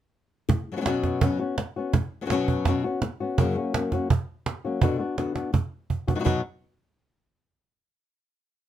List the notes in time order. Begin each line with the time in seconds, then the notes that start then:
0.49 muted nylon-string guitar stroke, cajon bass
0.72 F#3 B3 C#4 F#4
0.76 F#3 B3 C#4 F#4
0.81 F#3 B3 C#4 F#4
0.85 B2 F#3 B3 C#4 F#4, cajon slap
1.04 cajon bass, cajon slap
1.21 B2 F#3 B3 C#4 F#4, cajon bass
1.39 B3 C#4 F#4
1.58 muted nylon-string guitar stroke, cajon slap
1.76 B3 C#4 F#4
1.94 muted nylon-string guitar stroke, cajon bass
2.21 F#3 B3 C#4 F#4
2.26 F#3 B3 C#4 F#4
2.30 B2 F#3 B3 C#4 F#4, cajon slap
2.48 cajon bass
2.65 B2 F#3 B3 C#4 F#4, cajon bass, cajon slap
2.84 B3 C#4 F#4
3.02 muted nylon-string guitar stroke, cajon slap
3.20 B3 C#4 F#4
3.38 F#2 C#3 F#3 A#3 C#4 F#4, cajon bass
3.57 F#3 A#3 C#4 F#4
3.74 F#3 A#3 C#4 F#4, cajon slap
3.92 F#3 A#3 C#4 F#4, cajon bass, cajon slap
4.10 muted nylon-string guitar stroke, cajon bass
4.46 cajon slap
4.65 F#3 A#3 C#4 F#4
4.82 B2 D3 B3 D4 F#4, cajon bass
4.99 B3 D4 F#4
5.18 D3 B3 D4 F#4, cajon slap
5.35 B3 D4 F#4, cajon slap
5.53 muted nylon-string guitar stroke, cajon bass
5.90 cajon bass
6.08 B3 D4 F#4, cajon bass
6.15 F#3 B3 D#4 F#4
6.20 B3 D#4 F#4
6.24 B2 F#3 B3 D#4 F#4, cajon bass